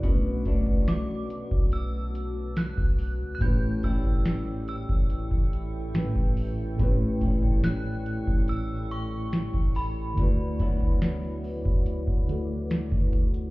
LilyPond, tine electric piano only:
\new Staff \with { instrumentName = "Tine electric piano" } { \time 4/4 \key a \mixolydian \tempo 4 = 71 <b, a cis' d' ais' b'>1 | <a, a cis' g' b'>2. <a, a cis' g' b'>4 | <a, a b cis' g' b'>1 | <d a e' fis' b'>2~ <d a e' fis' b'>8 <d a e' fis' a'>4. | }